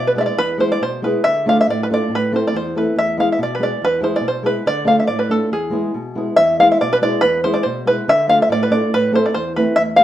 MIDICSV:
0, 0, Header, 1, 3, 480
1, 0, Start_track
1, 0, Tempo, 429492
1, 431, Time_signature, 2, 2, 24, 8
1, 5709, Tempo, 422833
1, 11306, End_track
2, 0, Start_track
2, 0, Title_t, "Five-string banjo"
2, 0, Program_c, 0, 105
2, 82, Note_on_c, 0, 71, 83
2, 131, Note_off_c, 0, 71, 0
2, 204, Note_on_c, 0, 74, 73
2, 230, Note_on_c, 0, 76, 66
2, 263, Note_off_c, 0, 74, 0
2, 285, Note_off_c, 0, 76, 0
2, 289, Note_on_c, 0, 74, 80
2, 420, Note_off_c, 0, 74, 0
2, 430, Note_on_c, 0, 71, 127
2, 655, Note_off_c, 0, 71, 0
2, 675, Note_on_c, 0, 72, 83
2, 802, Note_on_c, 0, 74, 80
2, 807, Note_off_c, 0, 72, 0
2, 917, Note_off_c, 0, 74, 0
2, 924, Note_on_c, 0, 72, 84
2, 1159, Note_off_c, 0, 72, 0
2, 1163, Note_on_c, 0, 71, 78
2, 1385, Note_on_c, 0, 76, 125
2, 1407, Note_off_c, 0, 71, 0
2, 1639, Note_off_c, 0, 76, 0
2, 1665, Note_on_c, 0, 77, 106
2, 1783, Note_off_c, 0, 77, 0
2, 1796, Note_on_c, 0, 76, 91
2, 1895, Note_off_c, 0, 76, 0
2, 1904, Note_on_c, 0, 74, 78
2, 2023, Note_off_c, 0, 74, 0
2, 2049, Note_on_c, 0, 71, 84
2, 2089, Note_off_c, 0, 71, 0
2, 2164, Note_on_c, 0, 74, 90
2, 2388, Note_off_c, 0, 74, 0
2, 2405, Note_on_c, 0, 71, 107
2, 2628, Note_off_c, 0, 71, 0
2, 2635, Note_on_c, 0, 72, 72
2, 2749, Note_off_c, 0, 72, 0
2, 2765, Note_on_c, 0, 74, 78
2, 2851, Note_off_c, 0, 74, 0
2, 2865, Note_on_c, 0, 72, 77
2, 3098, Note_off_c, 0, 72, 0
2, 3102, Note_on_c, 0, 71, 69
2, 3314, Note_off_c, 0, 71, 0
2, 3336, Note_on_c, 0, 76, 113
2, 3573, Note_off_c, 0, 76, 0
2, 3578, Note_on_c, 0, 77, 91
2, 3688, Note_off_c, 0, 77, 0
2, 3714, Note_on_c, 0, 76, 74
2, 3815, Note_off_c, 0, 76, 0
2, 3832, Note_on_c, 0, 74, 88
2, 3947, Note_off_c, 0, 74, 0
2, 3965, Note_on_c, 0, 71, 74
2, 4058, Note_on_c, 0, 74, 80
2, 4059, Note_off_c, 0, 71, 0
2, 4294, Note_off_c, 0, 74, 0
2, 4298, Note_on_c, 0, 71, 114
2, 4508, Note_off_c, 0, 71, 0
2, 4512, Note_on_c, 0, 72, 75
2, 4646, Note_off_c, 0, 72, 0
2, 4649, Note_on_c, 0, 74, 75
2, 4761, Note_off_c, 0, 74, 0
2, 4782, Note_on_c, 0, 72, 71
2, 4980, Note_off_c, 0, 72, 0
2, 4985, Note_on_c, 0, 71, 80
2, 5222, Note_on_c, 0, 74, 117
2, 5236, Note_off_c, 0, 71, 0
2, 5445, Note_off_c, 0, 74, 0
2, 5449, Note_on_c, 0, 77, 78
2, 5579, Note_off_c, 0, 77, 0
2, 5583, Note_on_c, 0, 76, 69
2, 5666, Note_off_c, 0, 76, 0
2, 5670, Note_on_c, 0, 74, 80
2, 5800, Note_on_c, 0, 71, 77
2, 5824, Note_off_c, 0, 74, 0
2, 5923, Note_off_c, 0, 71, 0
2, 5938, Note_on_c, 0, 69, 70
2, 6170, Note_off_c, 0, 69, 0
2, 6186, Note_on_c, 0, 68, 78
2, 6870, Note_off_c, 0, 68, 0
2, 7135, Note_on_c, 0, 76, 122
2, 7396, Note_off_c, 0, 76, 0
2, 7402, Note_on_c, 0, 77, 94
2, 7530, Note_off_c, 0, 77, 0
2, 7534, Note_on_c, 0, 76, 75
2, 7636, Note_off_c, 0, 76, 0
2, 7641, Note_on_c, 0, 74, 90
2, 7761, Note_off_c, 0, 74, 0
2, 7774, Note_on_c, 0, 71, 101
2, 7823, Note_off_c, 0, 71, 0
2, 7888, Note_on_c, 0, 74, 92
2, 8096, Note_on_c, 0, 71, 127
2, 8133, Note_off_c, 0, 74, 0
2, 8351, Note_off_c, 0, 71, 0
2, 8356, Note_on_c, 0, 72, 94
2, 8465, Note_on_c, 0, 74, 84
2, 8492, Note_off_c, 0, 72, 0
2, 8573, Note_on_c, 0, 72, 80
2, 8593, Note_off_c, 0, 74, 0
2, 8835, Note_off_c, 0, 72, 0
2, 8848, Note_on_c, 0, 71, 97
2, 9092, Note_off_c, 0, 71, 0
2, 9098, Note_on_c, 0, 76, 127
2, 9313, Note_off_c, 0, 76, 0
2, 9326, Note_on_c, 0, 77, 99
2, 9455, Note_off_c, 0, 77, 0
2, 9471, Note_on_c, 0, 76, 90
2, 9574, Note_off_c, 0, 76, 0
2, 9583, Note_on_c, 0, 74, 94
2, 9703, Note_off_c, 0, 74, 0
2, 9705, Note_on_c, 0, 71, 84
2, 9800, Note_off_c, 0, 71, 0
2, 9805, Note_on_c, 0, 74, 89
2, 10048, Note_off_c, 0, 74, 0
2, 10059, Note_on_c, 0, 71, 126
2, 10271, Note_off_c, 0, 71, 0
2, 10301, Note_on_c, 0, 72, 93
2, 10409, Note_off_c, 0, 72, 0
2, 10418, Note_on_c, 0, 74, 77
2, 10518, Note_on_c, 0, 72, 93
2, 10525, Note_off_c, 0, 74, 0
2, 10762, Note_off_c, 0, 72, 0
2, 10767, Note_on_c, 0, 71, 86
2, 10988, Note_on_c, 0, 76, 124
2, 11005, Note_off_c, 0, 71, 0
2, 11053, Note_off_c, 0, 76, 0
2, 11221, Note_on_c, 0, 77, 107
2, 11306, Note_off_c, 0, 77, 0
2, 11306, End_track
3, 0, Start_track
3, 0, Title_t, "Nylon-string guitar"
3, 0, Program_c, 1, 24
3, 0, Note_on_c, 1, 47, 75
3, 168, Note_on_c, 1, 56, 47
3, 172, Note_on_c, 1, 59, 50
3, 177, Note_on_c, 1, 68, 62
3, 182, Note_on_c, 1, 64, 46
3, 305, Note_off_c, 1, 47, 0
3, 375, Note_off_c, 1, 56, 0
3, 376, Note_off_c, 1, 59, 0
3, 379, Note_off_c, 1, 68, 0
3, 382, Note_off_c, 1, 64, 0
3, 415, Note_on_c, 1, 40, 57
3, 646, Note_on_c, 1, 56, 67
3, 653, Note_on_c, 1, 59, 51
3, 662, Note_on_c, 1, 64, 62
3, 667, Note_on_c, 1, 68, 67
3, 788, Note_off_c, 1, 40, 0
3, 855, Note_off_c, 1, 56, 0
3, 858, Note_off_c, 1, 59, 0
3, 862, Note_off_c, 1, 64, 0
3, 865, Note_off_c, 1, 68, 0
3, 908, Note_on_c, 1, 47, 62
3, 1140, Note_on_c, 1, 56, 48
3, 1146, Note_on_c, 1, 59, 53
3, 1152, Note_on_c, 1, 64, 43
3, 1171, Note_on_c, 1, 68, 59
3, 1275, Note_off_c, 1, 47, 0
3, 1342, Note_off_c, 1, 56, 0
3, 1346, Note_off_c, 1, 59, 0
3, 1349, Note_off_c, 1, 64, 0
3, 1358, Note_off_c, 1, 68, 0
3, 1408, Note_on_c, 1, 50, 57
3, 1630, Note_on_c, 1, 57, 67
3, 1640, Note_on_c, 1, 62, 65
3, 1646, Note_on_c, 1, 65, 51
3, 1648, Note_on_c, 1, 69, 65
3, 1767, Note_off_c, 1, 50, 0
3, 1828, Note_off_c, 1, 57, 0
3, 1834, Note_off_c, 1, 62, 0
3, 1836, Note_off_c, 1, 65, 0
3, 1837, Note_off_c, 1, 69, 0
3, 1875, Note_on_c, 1, 45, 69
3, 2126, Note_on_c, 1, 57, 58
3, 2129, Note_on_c, 1, 62, 47
3, 2131, Note_on_c, 1, 65, 56
3, 2143, Note_on_c, 1, 69, 58
3, 2240, Note_off_c, 1, 45, 0
3, 2317, Note_off_c, 1, 57, 0
3, 2318, Note_off_c, 1, 62, 0
3, 2318, Note_off_c, 1, 65, 0
3, 2325, Note_off_c, 1, 69, 0
3, 2337, Note_on_c, 1, 45, 63
3, 2593, Note_on_c, 1, 57, 66
3, 2600, Note_on_c, 1, 60, 61
3, 2606, Note_on_c, 1, 64, 55
3, 2614, Note_on_c, 1, 69, 72
3, 2710, Note_off_c, 1, 45, 0
3, 2790, Note_off_c, 1, 57, 0
3, 2793, Note_off_c, 1, 60, 0
3, 2797, Note_off_c, 1, 64, 0
3, 2801, Note_off_c, 1, 69, 0
3, 2834, Note_on_c, 1, 40, 72
3, 3077, Note_on_c, 1, 57, 58
3, 3080, Note_on_c, 1, 60, 42
3, 3087, Note_on_c, 1, 64, 52
3, 3092, Note_on_c, 1, 69, 63
3, 3200, Note_off_c, 1, 40, 0
3, 3273, Note_off_c, 1, 57, 0
3, 3273, Note_off_c, 1, 60, 0
3, 3278, Note_off_c, 1, 64, 0
3, 3278, Note_off_c, 1, 69, 0
3, 3309, Note_on_c, 1, 40, 59
3, 3543, Note_on_c, 1, 56, 57
3, 3548, Note_on_c, 1, 59, 60
3, 3556, Note_on_c, 1, 64, 60
3, 3572, Note_on_c, 1, 68, 63
3, 3677, Note_off_c, 1, 40, 0
3, 3745, Note_off_c, 1, 56, 0
3, 3746, Note_off_c, 1, 59, 0
3, 3751, Note_off_c, 1, 64, 0
3, 3759, Note_off_c, 1, 68, 0
3, 3782, Note_on_c, 1, 47, 66
3, 4014, Note_on_c, 1, 56, 47
3, 4021, Note_on_c, 1, 59, 55
3, 4027, Note_on_c, 1, 64, 42
3, 4027, Note_on_c, 1, 68, 56
3, 4152, Note_off_c, 1, 47, 0
3, 4220, Note_off_c, 1, 56, 0
3, 4224, Note_off_c, 1, 59, 0
3, 4225, Note_off_c, 1, 68, 0
3, 4226, Note_off_c, 1, 64, 0
3, 4267, Note_on_c, 1, 40, 60
3, 4477, Note_on_c, 1, 56, 67
3, 4487, Note_on_c, 1, 64, 55
3, 4490, Note_on_c, 1, 59, 52
3, 4502, Note_on_c, 1, 68, 72
3, 4634, Note_off_c, 1, 40, 0
3, 4692, Note_off_c, 1, 56, 0
3, 4694, Note_off_c, 1, 64, 0
3, 4697, Note_off_c, 1, 59, 0
3, 4700, Note_on_c, 1, 47, 68
3, 4703, Note_off_c, 1, 68, 0
3, 4946, Note_on_c, 1, 56, 45
3, 4952, Note_on_c, 1, 59, 48
3, 4956, Note_on_c, 1, 64, 53
3, 4965, Note_on_c, 1, 68, 59
3, 5088, Note_off_c, 1, 47, 0
3, 5164, Note_off_c, 1, 56, 0
3, 5167, Note_off_c, 1, 59, 0
3, 5168, Note_off_c, 1, 64, 0
3, 5173, Note_off_c, 1, 68, 0
3, 5210, Note_on_c, 1, 50, 72
3, 5415, Note_on_c, 1, 57, 67
3, 5418, Note_on_c, 1, 62, 64
3, 5433, Note_on_c, 1, 65, 50
3, 5434, Note_on_c, 1, 69, 77
3, 5582, Note_off_c, 1, 50, 0
3, 5637, Note_off_c, 1, 57, 0
3, 5637, Note_off_c, 1, 62, 0
3, 5645, Note_off_c, 1, 69, 0
3, 5646, Note_off_c, 1, 65, 0
3, 5686, Note_on_c, 1, 45, 68
3, 5917, Note_on_c, 1, 57, 59
3, 5921, Note_on_c, 1, 62, 50
3, 5931, Note_on_c, 1, 65, 47
3, 5942, Note_on_c, 1, 69, 51
3, 6064, Note_off_c, 1, 45, 0
3, 6131, Note_off_c, 1, 57, 0
3, 6132, Note_off_c, 1, 62, 0
3, 6138, Note_off_c, 1, 65, 0
3, 6144, Note_off_c, 1, 69, 0
3, 6174, Note_on_c, 1, 40, 60
3, 6382, Note_on_c, 1, 56, 64
3, 6390, Note_on_c, 1, 59, 60
3, 6404, Note_on_c, 1, 64, 59
3, 6414, Note_on_c, 1, 68, 70
3, 6550, Note_off_c, 1, 40, 0
3, 6605, Note_off_c, 1, 56, 0
3, 6609, Note_off_c, 1, 59, 0
3, 6616, Note_off_c, 1, 64, 0
3, 6621, Note_off_c, 1, 68, 0
3, 6655, Note_on_c, 1, 47, 67
3, 6894, Note_on_c, 1, 56, 49
3, 6898, Note_on_c, 1, 59, 56
3, 6899, Note_on_c, 1, 64, 50
3, 6919, Note_on_c, 1, 68, 55
3, 7031, Note_off_c, 1, 47, 0
3, 7102, Note_off_c, 1, 56, 0
3, 7104, Note_off_c, 1, 59, 0
3, 7104, Note_off_c, 1, 64, 0
3, 7115, Note_off_c, 1, 68, 0
3, 7147, Note_on_c, 1, 40, 73
3, 7392, Note_on_c, 1, 59, 62
3, 7398, Note_on_c, 1, 56, 68
3, 7408, Note_on_c, 1, 64, 65
3, 7415, Note_on_c, 1, 68, 66
3, 7518, Note_off_c, 1, 40, 0
3, 7592, Note_off_c, 1, 59, 0
3, 7595, Note_off_c, 1, 56, 0
3, 7599, Note_off_c, 1, 64, 0
3, 7603, Note_off_c, 1, 68, 0
3, 7642, Note_on_c, 1, 47, 69
3, 7869, Note_on_c, 1, 56, 56
3, 7882, Note_on_c, 1, 59, 54
3, 7890, Note_on_c, 1, 64, 46
3, 7900, Note_on_c, 1, 68, 59
3, 8006, Note_off_c, 1, 47, 0
3, 8071, Note_off_c, 1, 56, 0
3, 8077, Note_off_c, 1, 59, 0
3, 8081, Note_off_c, 1, 64, 0
3, 8086, Note_off_c, 1, 68, 0
3, 8115, Note_on_c, 1, 40, 65
3, 8350, Note_on_c, 1, 56, 68
3, 8359, Note_on_c, 1, 59, 62
3, 8366, Note_on_c, 1, 64, 63
3, 8366, Note_on_c, 1, 68, 70
3, 8482, Note_off_c, 1, 40, 0
3, 8551, Note_off_c, 1, 56, 0
3, 8556, Note_off_c, 1, 59, 0
3, 8557, Note_off_c, 1, 68, 0
3, 8559, Note_off_c, 1, 64, 0
3, 8599, Note_on_c, 1, 47, 66
3, 8829, Note_on_c, 1, 56, 47
3, 8834, Note_on_c, 1, 59, 40
3, 8848, Note_on_c, 1, 64, 51
3, 8855, Note_on_c, 1, 68, 59
3, 8964, Note_off_c, 1, 47, 0
3, 9030, Note_off_c, 1, 56, 0
3, 9031, Note_off_c, 1, 59, 0
3, 9039, Note_off_c, 1, 64, 0
3, 9043, Note_off_c, 1, 68, 0
3, 9082, Note_on_c, 1, 50, 72
3, 9307, Note_on_c, 1, 57, 63
3, 9322, Note_on_c, 1, 62, 57
3, 9329, Note_on_c, 1, 65, 63
3, 9334, Note_on_c, 1, 69, 79
3, 9445, Note_off_c, 1, 50, 0
3, 9508, Note_off_c, 1, 57, 0
3, 9516, Note_off_c, 1, 62, 0
3, 9518, Note_off_c, 1, 65, 0
3, 9521, Note_off_c, 1, 69, 0
3, 9551, Note_on_c, 1, 45, 81
3, 9787, Note_on_c, 1, 57, 61
3, 9803, Note_on_c, 1, 62, 45
3, 9811, Note_on_c, 1, 65, 54
3, 9815, Note_on_c, 1, 69, 53
3, 9917, Note_off_c, 1, 45, 0
3, 9987, Note_off_c, 1, 57, 0
3, 9995, Note_off_c, 1, 62, 0
3, 9999, Note_off_c, 1, 65, 0
3, 10000, Note_off_c, 1, 69, 0
3, 10054, Note_on_c, 1, 45, 58
3, 10260, Note_on_c, 1, 57, 69
3, 10267, Note_on_c, 1, 60, 58
3, 10275, Note_on_c, 1, 64, 51
3, 10281, Note_on_c, 1, 69, 68
3, 10408, Note_off_c, 1, 45, 0
3, 10462, Note_off_c, 1, 57, 0
3, 10465, Note_off_c, 1, 60, 0
3, 10470, Note_off_c, 1, 64, 0
3, 10470, Note_off_c, 1, 69, 0
3, 10533, Note_on_c, 1, 40, 67
3, 10771, Note_on_c, 1, 57, 53
3, 10774, Note_on_c, 1, 64, 50
3, 10778, Note_on_c, 1, 60, 50
3, 10785, Note_on_c, 1, 69, 58
3, 10886, Note_off_c, 1, 40, 0
3, 10955, Note_off_c, 1, 64, 0
3, 10956, Note_off_c, 1, 57, 0
3, 10959, Note_off_c, 1, 60, 0
3, 10962, Note_off_c, 1, 69, 0
3, 11000, Note_on_c, 1, 40, 59
3, 11228, Note_on_c, 1, 56, 60
3, 11237, Note_on_c, 1, 59, 57
3, 11242, Note_on_c, 1, 68, 62
3, 11248, Note_on_c, 1, 64, 54
3, 11306, Note_off_c, 1, 40, 0
3, 11306, Note_off_c, 1, 56, 0
3, 11306, Note_off_c, 1, 59, 0
3, 11306, Note_off_c, 1, 64, 0
3, 11306, Note_off_c, 1, 68, 0
3, 11306, End_track
0, 0, End_of_file